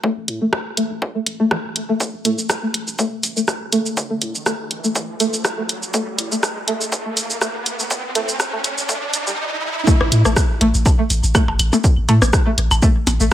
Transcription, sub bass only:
0, 0, Header, 1, 2, 480
1, 0, Start_track
1, 0, Tempo, 491803
1, 35, Time_signature, 4, 2, 24, 8
1, 13012, End_track
2, 0, Start_track
2, 0, Title_t, "Sub bass"
2, 0, Program_c, 0, 38
2, 165, Note_on_c, 0, 33, 95
2, 258, Note_off_c, 0, 33, 0
2, 275, Note_on_c, 0, 45, 88
2, 386, Note_off_c, 0, 45, 0
2, 404, Note_on_c, 0, 33, 99
2, 498, Note_off_c, 0, 33, 0
2, 753, Note_on_c, 0, 33, 92
2, 865, Note_off_c, 0, 33, 0
2, 885, Note_on_c, 0, 33, 84
2, 978, Note_off_c, 0, 33, 0
2, 1234, Note_on_c, 0, 33, 81
2, 1346, Note_off_c, 0, 33, 0
2, 1364, Note_on_c, 0, 33, 86
2, 1458, Note_off_c, 0, 33, 0
2, 1604, Note_on_c, 0, 31, 91
2, 1698, Note_off_c, 0, 31, 0
2, 1713, Note_on_c, 0, 33, 94
2, 1825, Note_off_c, 0, 33, 0
2, 2083, Note_on_c, 0, 33, 96
2, 2178, Note_off_c, 0, 33, 0
2, 2193, Note_on_c, 0, 45, 85
2, 2305, Note_off_c, 0, 45, 0
2, 2325, Note_on_c, 0, 33, 99
2, 2418, Note_off_c, 0, 33, 0
2, 2674, Note_on_c, 0, 33, 90
2, 2786, Note_off_c, 0, 33, 0
2, 2806, Note_on_c, 0, 33, 82
2, 2899, Note_off_c, 0, 33, 0
2, 3154, Note_on_c, 0, 33, 81
2, 3265, Note_off_c, 0, 33, 0
2, 3287, Note_on_c, 0, 33, 83
2, 3379, Note_off_c, 0, 33, 0
2, 3524, Note_on_c, 0, 31, 95
2, 3618, Note_off_c, 0, 31, 0
2, 3634, Note_on_c, 0, 33, 89
2, 3745, Note_off_c, 0, 33, 0
2, 4006, Note_on_c, 0, 33, 98
2, 4099, Note_off_c, 0, 33, 0
2, 4115, Note_on_c, 0, 45, 87
2, 4226, Note_off_c, 0, 45, 0
2, 4245, Note_on_c, 0, 33, 90
2, 4338, Note_off_c, 0, 33, 0
2, 4594, Note_on_c, 0, 33, 94
2, 4705, Note_off_c, 0, 33, 0
2, 4725, Note_on_c, 0, 33, 82
2, 4819, Note_off_c, 0, 33, 0
2, 5075, Note_on_c, 0, 33, 85
2, 5186, Note_off_c, 0, 33, 0
2, 5205, Note_on_c, 0, 33, 84
2, 5298, Note_off_c, 0, 33, 0
2, 5444, Note_on_c, 0, 31, 101
2, 5538, Note_off_c, 0, 31, 0
2, 5554, Note_on_c, 0, 33, 96
2, 5665, Note_off_c, 0, 33, 0
2, 5924, Note_on_c, 0, 33, 102
2, 6018, Note_off_c, 0, 33, 0
2, 6033, Note_on_c, 0, 45, 86
2, 6145, Note_off_c, 0, 45, 0
2, 6164, Note_on_c, 0, 33, 97
2, 6258, Note_off_c, 0, 33, 0
2, 6515, Note_on_c, 0, 33, 91
2, 6626, Note_off_c, 0, 33, 0
2, 6645, Note_on_c, 0, 33, 88
2, 6738, Note_off_c, 0, 33, 0
2, 6995, Note_on_c, 0, 33, 83
2, 7106, Note_off_c, 0, 33, 0
2, 7127, Note_on_c, 0, 33, 83
2, 7220, Note_off_c, 0, 33, 0
2, 7366, Note_on_c, 0, 31, 95
2, 7459, Note_off_c, 0, 31, 0
2, 7475, Note_on_c, 0, 33, 92
2, 7586, Note_off_c, 0, 33, 0
2, 7846, Note_on_c, 0, 33, 100
2, 7939, Note_off_c, 0, 33, 0
2, 7955, Note_on_c, 0, 45, 90
2, 8066, Note_off_c, 0, 45, 0
2, 8086, Note_on_c, 0, 33, 96
2, 8179, Note_off_c, 0, 33, 0
2, 8435, Note_on_c, 0, 33, 94
2, 8546, Note_off_c, 0, 33, 0
2, 8565, Note_on_c, 0, 33, 86
2, 8659, Note_off_c, 0, 33, 0
2, 8915, Note_on_c, 0, 33, 82
2, 9122, Note_off_c, 0, 33, 0
2, 9765, Note_on_c, 0, 33, 101
2, 9858, Note_off_c, 0, 33, 0
2, 9875, Note_on_c, 0, 45, 86
2, 9986, Note_off_c, 0, 45, 0
2, 10007, Note_on_c, 0, 33, 99
2, 10099, Note_off_c, 0, 33, 0
2, 10356, Note_on_c, 0, 33, 91
2, 10466, Note_off_c, 0, 33, 0
2, 10487, Note_on_c, 0, 33, 89
2, 10579, Note_off_c, 0, 33, 0
2, 10834, Note_on_c, 0, 33, 84
2, 10945, Note_off_c, 0, 33, 0
2, 10965, Note_on_c, 0, 33, 85
2, 11059, Note_off_c, 0, 33, 0
2, 11205, Note_on_c, 0, 31, 99
2, 11298, Note_off_c, 0, 31, 0
2, 11314, Note_on_c, 0, 33, 90
2, 11426, Note_off_c, 0, 33, 0
2, 11686, Note_on_c, 0, 33, 94
2, 11779, Note_off_c, 0, 33, 0
2, 11796, Note_on_c, 0, 45, 88
2, 11906, Note_off_c, 0, 45, 0
2, 11924, Note_on_c, 0, 33, 98
2, 12018, Note_off_c, 0, 33, 0
2, 12274, Note_on_c, 0, 33, 89
2, 12385, Note_off_c, 0, 33, 0
2, 12405, Note_on_c, 0, 33, 92
2, 12499, Note_off_c, 0, 33, 0
2, 12756, Note_on_c, 0, 33, 83
2, 12866, Note_off_c, 0, 33, 0
2, 12885, Note_on_c, 0, 33, 83
2, 12979, Note_off_c, 0, 33, 0
2, 13012, End_track
0, 0, End_of_file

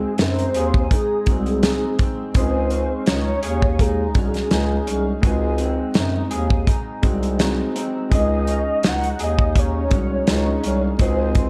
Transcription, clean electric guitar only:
0, 0, Header, 1, 2, 480
1, 0, Start_track
1, 0, Tempo, 721154
1, 1562, Time_signature, 4, 2, 24, 8
1, 7652, End_track
2, 0, Start_track
2, 0, Title_t, "Clean electric guitar"
2, 0, Program_c, 0, 27
2, 0, Note_on_c, 0, 60, 57
2, 0, Note_on_c, 0, 68, 69
2, 138, Note_on_c, 0, 63, 59
2, 372, Note_off_c, 0, 68, 0
2, 374, Note_on_c, 0, 68, 61
2, 617, Note_off_c, 0, 63, 0
2, 619, Note_on_c, 0, 63, 62
2, 847, Note_off_c, 0, 60, 0
2, 854, Note_on_c, 0, 60, 54
2, 1089, Note_off_c, 0, 63, 0
2, 1092, Note_on_c, 0, 63, 55
2, 1324, Note_off_c, 0, 60, 0
2, 1332, Note_on_c, 0, 60, 58
2, 1572, Note_off_c, 0, 68, 0
2, 1575, Note_on_c, 0, 68, 67
2, 1620, Note_off_c, 0, 60, 0
2, 1806, Note_on_c, 0, 61, 55
2, 1826, Note_off_c, 0, 63, 0
2, 2045, Note_on_c, 0, 63, 57
2, 2284, Note_off_c, 0, 68, 0
2, 2286, Note_on_c, 0, 68, 61
2, 2523, Note_off_c, 0, 63, 0
2, 2526, Note_on_c, 0, 63, 63
2, 2760, Note_off_c, 0, 61, 0
2, 2768, Note_on_c, 0, 61, 50
2, 2999, Note_off_c, 0, 63, 0
2, 3002, Note_on_c, 0, 63, 50
2, 3231, Note_off_c, 0, 61, 0
2, 3239, Note_on_c, 0, 61, 54
2, 3482, Note_off_c, 0, 68, 0
2, 3485, Note_on_c, 0, 68, 61
2, 3533, Note_off_c, 0, 61, 0
2, 3721, Note_on_c, 0, 60, 55
2, 3958, Note_off_c, 0, 63, 0
2, 3960, Note_on_c, 0, 63, 56
2, 4195, Note_off_c, 0, 68, 0
2, 4198, Note_on_c, 0, 68, 66
2, 4438, Note_off_c, 0, 63, 0
2, 4441, Note_on_c, 0, 63, 64
2, 4673, Note_off_c, 0, 60, 0
2, 4681, Note_on_c, 0, 60, 53
2, 4925, Note_off_c, 0, 63, 0
2, 4927, Note_on_c, 0, 63, 58
2, 5159, Note_off_c, 0, 60, 0
2, 5167, Note_on_c, 0, 60, 55
2, 5402, Note_off_c, 0, 68, 0
2, 5405, Note_on_c, 0, 68, 64
2, 5456, Note_off_c, 0, 60, 0
2, 5646, Note_on_c, 0, 61, 56
2, 5666, Note_off_c, 0, 63, 0
2, 5888, Note_on_c, 0, 63, 59
2, 6122, Note_off_c, 0, 68, 0
2, 6124, Note_on_c, 0, 68, 61
2, 6365, Note_off_c, 0, 63, 0
2, 6368, Note_on_c, 0, 63, 60
2, 6595, Note_off_c, 0, 61, 0
2, 6603, Note_on_c, 0, 61, 57
2, 6842, Note_off_c, 0, 63, 0
2, 6845, Note_on_c, 0, 63, 53
2, 7074, Note_off_c, 0, 61, 0
2, 7082, Note_on_c, 0, 61, 57
2, 7325, Note_off_c, 0, 68, 0
2, 7327, Note_on_c, 0, 68, 60
2, 7374, Note_off_c, 0, 61, 0
2, 7652, Note_off_c, 0, 63, 0
2, 7652, Note_off_c, 0, 68, 0
2, 7652, End_track
0, 0, End_of_file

